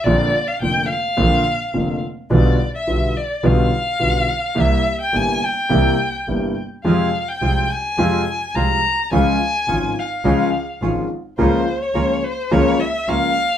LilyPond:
<<
  \new Staff \with { instrumentName = "Violin" } { \time 4/4 \key bes \dorian \tempo 4 = 106 d''8. f''16 g''8 f''2 r8 | d''8. e''8. d''8 f''2 | e''8. g''16 aes''8 g''2 r8 | f''8. g''8. aes''4. bes''4 |
aes''4. f''4. r4 | c''8. des''8. c''8 des''8 e''8 f''4 | }
  \new Staff \with { instrumentName = "Bandoneon" } { \time 4/4 \key bes \dorian r1 | r1 | r1 | <c' f' aes'>8 r8 <c' f' aes'>8 r8 <c' f' aes'>8 r8 <c' f' aes'>8 r8 |
<des' f' aes'>8 r8 <des' f' aes'>8 r8 <des' f' aes'>8 r8 <des' f' aes'>8 r8 | <des' f' bes'>8 r8 <des' f' bes'>8 r8 <des' f' bes'>8 r8 <des' f' bes'>8 r8 | }
  \new Staff \with { instrumentName = "Grand piano" } { \clef bass \time 4/4 \key bes \dorian <bes,, bes, d bes c' f'>8 r8 <f,, f, d bes c' f'>8 r8 <bes,, bes, d bes c' f'>8 r8 <f,, f, d bes c' f'>8 r8 | <b,, b, d g b f'>8 r8 <b,, b, d g b f'>8 r8 <b,, b, d g b f'>8 r8 <b,, b, d g b f'>8 r8 | <c, c g bes e'>8 r8 <g,, g, c g bes e'>8 r8 <c, c g bes e'>8 r8 <g,, g, c g bes e'>8 r8 | <f, c f aes f'>8 r8 <c, c f aes f'>8 r8 <f, c f aes f'>8 r8 <c, c f aes f'>8 r8 |
<des, des f aes f'>8 r8 <aes,, aes, des f aes f'>8 r8 <des, des f aes f'>8 r8 <aes,, aes, des f aes f'>8 r8 | <des, des f bes f'>8 r8 <des, des f bes f'>8 r8 <des, des f bes f'>8 r8 <des, des f bes f'>8 r8 | }
  \new Staff \with { instrumentName = "Double bass" } { \clef bass \time 4/4 \key bes \dorian bes,,8 r8 f,,8 r8 bes,,8 r8 f,,8 r8 | b,,8 r8 b,,8 r8 b,,8 r8 b,,8 r8 | c,8 r8 g,,8 r8 c,8 r8 g,,8 r8 | f,8 r8 c,8 r8 f,8 r8 c,8 r8 |
des,8 r8 aes,,8 r8 des,8 r8 aes,,8 r8 | des,8 r8 des,8 r8 des,8 r8 des,8 r8 | }
>>